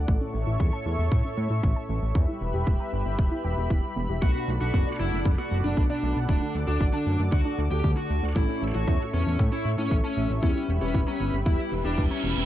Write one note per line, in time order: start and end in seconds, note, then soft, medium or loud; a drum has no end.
0.08 0.19 A1 loud
0.08 2.12 A2 medium
0.08 0.20 A3 medium
0.08 2.12 A3 medium
0.08 2.12 C#4 medium
0.08 2.12 E4 medium
0.08 2.13 A4 medium
0.08 2.12 A4 medium
0.08 2.13 C#5 medium
0.08 2.13 E5 medium
0.08 2.13 C#6 medium
0.08 kick loud
0.21 0.29 C#4 loud
0.34 0.45 A1 medium
0.34 0.39 A3 medium
0.47 0.58 A1 medium
0.47 0.58 E4 loud
0.60 0.71 E2 loud
0.60 0.68 C#4 medium
0.60 kick loud
0.73 0.81 A5 loud
0.86 0.97 E2 medium
0.86 0.94 A3 medium
0.99 1.10 E2 medium
0.99 1.03 A3 medium
1.12 1.23 A2 loud
1.12 1.23 C#5 medium
1.12 kick loud
1.25 1.32 C#4 loud
1.37 1.48 A2 loud
1.37 1.42 A3 medium
1.50 1.61 A2 medium
1.50 1.62 E4 loud
1.63 1.74 A1 loud
1.63 1.75 A4 medium
1.63 kick loud
1.76 1.84 A5 medium
1.89 2.00 A1 medium
1.89 1.97 A3 medium
2.02 2.13 A1 medium
2.02 2.10 A3 medium
2.15 2.26 E2 loud
2.15 4.19 G3 medium
2.15 2.27 B3 medium
2.15 4.19 B3 medium
2.15 4.19 E4 medium
2.15 4.20 G4 medium
2.15 4.19 G4 medium
2.15 4.20 B4 medium
2.15 4.20 E5 medium
2.15 6.25 B5 medium
2.15 kick loud
2.28 2.36 E4 loud
2.41 2.52 E1 medium
2.41 2.46 B3 medium
2.54 2.65 E1 medium
2.54 2.65 G4 loud
2.67 2.78 D1 medium
2.67 2.75 E4 medium
2.67 kick loud
2.80 2.88 A#5 loud
2.93 3.04 G1 medium
2.93 3.00 B3 medium
3.06 3.17 G1 medium
3.06 3.10 B3 medium
3.19 3.30 E1 loud
3.19 3.30 E5 medium
3.19 kick loud
3.31 3.39 E4 medium
3.44 3.55 E1 loud
3.44 3.52 G5 loud
3.57 3.68 E1 medium
3.57 3.69 E4 medium
3.70 3.81 E1 medium
3.70 3.82 E4 medium
3.70 kick loud
3.83 3.88 E4 medium
3.96 4.07 E1 medium
3.96 4.01 B3 loud
4.09 4.20 E1 medium
4.09 4.14 G4 medium
4.22 4.33 B1 loud
4.22 6.26 B2 medium
4.22 6.26 A3 medium
4.22 4.33 A3 medium
4.22 6.26 B3 medium
4.22 6.26 D4 medium
4.22 6.26 F#4 medium
4.22 4.48 F#4 medium
4.22 10.39 A4 medium
4.22 8.32 D5 medium
4.22 8.32 F#5 medium
4.22 kick loud
4.35 4.43 B3 loud
4.48 4.59 B1 medium
4.48 4.52 A3 medium
4.61 4.72 B1 medium
4.61 4.72 D4 loud
4.61 4.87 F#4 medium
4.74 4.85 F#1 medium
4.74 4.81 B3 medium
4.74 kick loud
4.87 4.94 D5 loud
5.00 5.11 F#1 loud
5.00 5.07 A3 medium
5.00 5.26 E4 medium
5.13 5.24 F#1 medium
5.13 5.17 A3 medium
5.25 5.36 F#1 loud
5.25 5.37 A4 medium
5.25 kick loud
5.38 5.46 B3 loud
5.38 5.56 F#4 medium
5.51 5.62 F#1 medium
5.51 5.56 A3 medium
5.64 5.75 F#1 medium
5.64 5.76 D4 loud
5.64 5.82 D4 medium
5.77 5.88 B1 loud
5.77 5.89 F#4 medium
5.77 kick loud
5.90 6.16 D4 medium
5.90 5.98 D5 loud
6.03 6.14 B1 medium
6.03 6.11 A3 medium
6.16 6.27 B1 medium
6.16 6.24 A3 medium
6.29 6.40 D1 loud
6.29 8.33 D3 medium
6.29 6.40 A3 medium
6.29 8.33 A3 medium
6.29 6.55 D4 medium
6.29 8.33 D4 medium
6.29 8.33 F#4 medium
6.29 8.33 A4 medium
6.29 8.34 D6 medium
6.29 kick loud
6.42 6.49 D4 loud
6.55 6.66 D2 medium
6.55 6.59 A3 medium
6.67 6.79 D2 medium
6.67 6.85 D4 medium
6.67 6.79 F#4 loud
6.81 6.92 A1 loud
6.81 6.88 D4 medium
6.81 kick loud
6.93 7.20 D4 medium
6.93 7.01 A5 loud
7.06 7.17 F#2 medium
7.06 7.14 A3 medium
7.19 7.30 F#2 medium
7.19 7.24 A3 medium
7.32 7.43 D2 loud
7.32 7.58 F#4 medium
7.32 7.44 D5 medium
7.32 kick loud
7.45 7.53 D4 loud
7.58 7.69 D2 medium
7.58 7.63 A3 medium
7.71 7.82 D2 medium
7.71 7.83 F#4 loud
7.71 7.89 G4 medium
7.84 7.95 D2 medium
7.84 7.96 A4 medium
7.84 kick loud
7.97 8.23 F#4 medium
7.97 8.05 A5 loud
8.10 8.21 D2 medium
8.10 8.18 A3 medium
8.23 8.34 D2 medium
8.23 8.30 A3 medium
8.36 8.47 A1 loud
8.36 10.40 A2 medium
8.36 8.47 A3 medium
8.36 10.40 A3 medium
8.36 10.40 C#4 medium
8.36 8.62 E4 loud
8.36 10.40 E4 medium
8.36 10.40 A4 medium
8.36 10.41 C#5 medium
8.36 12.45 E5 medium
8.36 10.41 C#6 medium
8.36 kick loud
8.49 8.56 C#4 loud
8.62 8.73 A1 medium
8.62 8.66 A3 medium
8.74 8.86 A1 medium
8.74 8.86 E4 loud
8.74 9.01 F#4 medium
8.87 8.98 E2 loud
8.87 8.95 C#4 medium
8.87 kick loud
9.00 9.08 A5 loud
9.13 9.24 E2 medium
9.13 9.21 A3 medium
9.13 9.40 C#4 medium
9.26 9.37 E2 medium
9.26 9.31 A3 medium
9.39 9.50 A2 loud
9.39 9.51 C#5 medium
9.39 kick loud
9.52 9.60 C#4 loud
9.52 9.70 E4 medium
9.65 9.76 A2 medium
9.65 9.70 A3 medium
9.78 9.89 A2 medium
9.78 9.96 C#4 medium
9.78 9.90 E4 loud
9.91 10.02 A1 loud
9.91 10.02 A4 medium
9.91 kick medium
10.04 10.30 C#4 loud
10.04 10.12 A5 loud
10.17 10.28 A1 medium
10.17 10.25 A3 medium
10.30 10.41 A1 medium
10.30 10.38 A3 medium
10.42 10.54 E2 loud
10.42 12.45 G3 medium
10.42 12.45 B3 medium
10.42 10.54 B3 medium
10.42 10.69 C#4 medium
10.42 12.45 E4 medium
10.42 12.45 G4 medium
10.42 12.45 B4 medium
10.42 12.45 B5 medium
10.42 kick loud
10.56 10.63 E4 loud
10.69 10.80 E1 medium
10.69 10.73 B3 medium
10.82 10.93 E1 medium
10.82 10.99 C#4 medium
10.82 10.93 G4 loud
10.94 11.05 D1 loud
10.94 11.02 E4 medium
10.94 kick loud
11.07 11.34 C#4 medium
11.07 11.15 A#5 loud
11.20 11.31 G1 medium
11.20 11.28 B3 medium
11.33 11.44 G1 medium
11.33 11.38 B3 medium
11.46 11.57 E1 loud
11.46 11.72 E4 medium
11.46 11.58 E5 medium
11.46 kick loud
11.46 reverse cymbal medium
11.59 11.67 E4 loud
11.72 11.83 E1 medium
11.72 11.77 B3 medium
11.85 11.96 E1 medium
11.85 12.02 D4 medium
11.85 11.96 G4 loud
11.98 12.09 E1 loud
11.98 12.09 B4 medium
11.98 kick loud
12.11 12.37 C#4 medium
12.11 12.18 A#5 loud
12.24 12.35 E1 medium
12.24 12.31 B3 medium
12.37 12.45 E1 medium
12.37 12.44 B3 medium